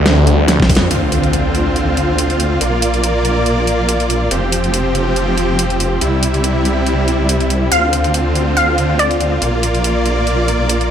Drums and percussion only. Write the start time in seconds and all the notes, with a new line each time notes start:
0.06 snare, closed hi-hat
0.27 closed hi-hat
0.48 snare, closed hi-hat
0.60 kick, snare
0.69 kick, open hi-hat
0.75 snare, closed hi-hat
0.91 closed hi-hat
1.12 closed hi-hat
1.24 closed hi-hat
1.33 closed hi-hat
1.55 closed hi-hat
1.76 closed hi-hat
1.97 closed hi-hat
2.18 closed hi-hat
2.30 closed hi-hat
2.40 closed hi-hat
2.61 closed hi-hat
2.82 closed hi-hat
2.94 closed hi-hat
3.04 closed hi-hat
3.25 closed hi-hat
3.46 closed hi-hat
3.67 closed hi-hat
3.89 closed hi-hat
4.00 closed hi-hat
4.10 closed hi-hat
4.31 closed hi-hat
4.52 closed hi-hat
4.64 closed hi-hat
4.74 closed hi-hat
4.95 closed hi-hat
5.16 closed hi-hat
5.38 closed hi-hat
5.59 closed hi-hat
5.70 closed hi-hat
5.80 closed hi-hat
6.01 closed hi-hat
6.23 closed hi-hat
6.34 closed hi-hat
6.44 closed hi-hat
6.65 closed hi-hat
6.87 closed hi-hat
7.08 closed hi-hat
7.29 closed hi-hat
7.40 closed hi-hat
7.50 closed hi-hat
7.72 closed hi-hat
7.93 closed hi-hat
8.04 closed hi-hat
8.14 closed hi-hat
8.35 closed hi-hat
8.57 closed hi-hat
8.78 closed hi-hat
8.99 closed hi-hat
9.11 closed hi-hat
9.21 closed hi-hat
9.42 closed hi-hat
9.63 closed hi-hat
9.75 closed hi-hat
9.84 closed hi-hat
10.06 closed hi-hat
10.27 closed hi-hat
10.48 closed hi-hat
10.69 closed hi-hat
10.81 closed hi-hat